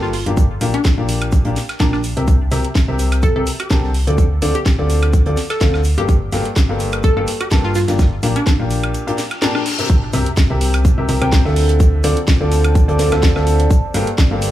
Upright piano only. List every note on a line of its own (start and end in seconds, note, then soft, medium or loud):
0.26 0.43 A#2 medium
0.26 0.43 D4 medium
0.26 0.43 G4 medium
0.26 0.43 A#4 medium
0.26 0.43 F5 medium
0.61 0.73 A#2 medium
0.61 0.73 D4 medium
0.61 0.73 G4 medium
0.61 0.73 A#4 medium
0.61 0.73 F5 loud
0.98 1.42 A#2 medium
0.98 1.42 D4 medium
0.98 1.42 G4 medium
0.98 1.42 A#4 medium
0.98 1.42 F5 medium
1.45 1.55 A#2 medium
1.45 1.55 D4 medium
1.45 1.55 G4 medium
1.45 1.55 A#4 medium
1.45 1.55 F5 medium
1.80 1.98 A#2 medium
1.80 1.98 D4 medium
1.80 1.98 G4 medium
1.80 1.98 A#4 medium
1.80 1.98 A#5 medium
2.17 2.34 C3 medium
2.17 2.34 C4 medium
2.17 2.34 G4 medium
2.17 2.34 A#4 medium
2.17 2.34 E5 medium
2.52 2.63 C3 medium
2.52 2.63 C4 medium
2.52 2.63 G4 medium
2.52 2.63 A#4 medium
2.52 2.63 E5 medium
2.88 3.33 C3 medium
2.88 3.33 C4 medium
2.88 3.33 G4 medium
2.88 3.33 A#4 medium
2.88 3.33 E5 medium
3.36 3.46 C3 medium
3.36 3.46 C4 medium
3.36 3.46 G4 medium
3.36 3.46 A#4 medium
3.36 3.46 E5 medium
3.71 3.89 D3 medium
3.71 3.89 C4 medium
3.71 3.89 G4 medium
3.71 3.89 A#4 medium
3.71 3.89 A5 medium
4.07 4.24 D3 medium
4.07 4.24 C4 medium
4.07 4.24 F4 medium
4.07 4.24 A4 medium
4.07 4.24 D5 medium
4.42 4.54 D3 medium
4.42 4.54 C4 medium
4.42 4.54 F4 medium
4.42 4.54 A4 medium
4.42 4.54 D5 loud
4.79 5.23 D3 medium
4.79 5.23 C4 medium
4.79 5.23 F4 medium
4.79 5.23 A4 medium
4.79 5.23 D5 medium
5.26 5.36 D3 medium
5.26 5.36 C4 medium
5.26 5.36 F4 medium
5.26 5.36 A4 medium
5.26 5.36 D5 medium
5.61 5.79 D3 medium
5.61 5.79 C4 medium
5.61 5.79 F4 medium
5.61 5.79 A4 medium
5.61 5.79 F5 medium
5.98 6.15 G2 medium
5.98 6.15 A#3 medium
5.98 6.15 G4 medium
5.98 6.15 A4 medium
5.98 6.15 F5 medium
6.32 6.44 G2 medium
6.32 6.44 A#3 medium
6.32 6.44 G4 medium
6.32 6.44 A4 medium
6.32 6.44 F5 loud
6.69 7.14 G2 medium
6.69 7.14 A#3 medium
6.69 7.14 G4 medium
6.69 7.14 A4 medium
6.69 7.14 F5 medium
7.17 7.27 G2 medium
7.17 7.27 A#3 medium
7.17 7.27 G4 medium
7.17 7.27 A4 medium
7.17 7.27 F5 medium
7.51 7.70 G2 medium
7.51 7.70 A#3 medium
7.51 7.70 G4 medium
7.51 7.70 A4 medium
7.51 7.70 A5 loud
7.88 8.05 A#2 medium
7.88 8.05 D4 medium
7.88 8.05 G4 medium
7.88 8.05 A#4 medium
7.88 8.05 F5 medium
8.23 8.35 A#2 medium
8.23 8.35 D4 medium
8.23 8.35 G4 medium
8.23 8.35 A#4 medium
8.23 8.35 F5 medium
8.60 9.04 A#2 medium
8.60 9.04 D4 medium
8.60 9.04 G4 medium
8.60 9.04 A#4 medium
8.60 9.04 F5 medium
9.07 9.17 A#2 medium
9.07 9.17 D4 medium
9.07 9.17 G4 medium
9.07 9.17 A#4 medium
9.07 9.17 F5 medium
9.42 9.60 A#2 medium
9.42 9.60 D4 medium
9.42 9.60 G4 medium
9.42 9.60 A#4 medium
9.42 9.60 A#5 loud
9.79 9.96 C3 medium
9.79 9.96 C4 medium
9.79 9.96 G4 medium
9.79 9.96 A#4 medium
9.79 9.96 E5 medium
10.13 10.25 C3 medium
10.13 10.25 C4 medium
10.13 10.25 G4 medium
10.13 10.25 A#4 medium
10.13 10.25 E5 loud
10.50 10.95 C3 medium
10.50 10.95 C4 medium
10.50 10.95 G4 medium
10.50 10.95 A#4 medium
10.50 10.95 E5 medium
10.98 11.06 C3 medium
10.98 11.06 C4 medium
10.98 11.06 G4 medium
10.98 11.06 A#4 medium
10.98 11.07 E5 medium
11.09 11.20 C3 medium
11.09 11.20 C4 medium
11.09 11.20 G4 medium
11.09 11.20 A#4 medium
11.09 11.20 E5 medium
11.22 11.39 C3 loud
11.22 11.39 C4 medium
11.22 11.39 G4 medium
11.22 11.39 A#4 medium
11.22 11.39 G5 loud
11.45 12.01 D3 medium
11.45 12.01 C4 medium
11.45 12.01 F4 medium
11.45 12.01 A4 medium
11.45 12.01 E5 loud
12.04 12.16 D3 medium
12.04 12.16 C4 medium
12.04 12.16 F4 medium
12.04 12.16 A4 medium
12.04 12.16 D5 loud
12.41 12.85 D3 medium
12.41 12.85 C4 medium
12.41 12.85 F4 medium
12.41 12.85 A4 medium
12.41 12.85 D5 medium
12.88 12.97 D3 medium
12.88 12.97 C4 medium
12.88 12.97 F4 medium
12.88 12.97 A4 medium
12.88 12.97 D5 medium
12.99 13.10 D3 medium
12.99 13.10 C4 medium
12.99 13.10 F4 medium
12.99 13.10 A4 medium
12.99 13.10 D5 loud
13.12 13.29 D3 loud
13.12 13.29 C4 medium
13.12 13.29 F4 medium
13.12 13.29 A4 medium
13.12 13.29 E5 loud
13.36 13.69 D3 medium
13.36 13.69 C4 medium
13.36 13.69 F4 medium
13.36 13.69 A4 medium
13.36 13.69 E5 loud
13.94 14.06 G2 medium
13.94 14.06 A#3 medium
13.94 14.06 G4 medium
13.94 14.06 A4 medium
13.94 14.06 F5 loud
14.31 14.51 G2 medium
14.31 14.51 A#3 medium
14.31 14.51 G4 medium
14.31 14.51 A4 medium
14.31 14.51 F5 medium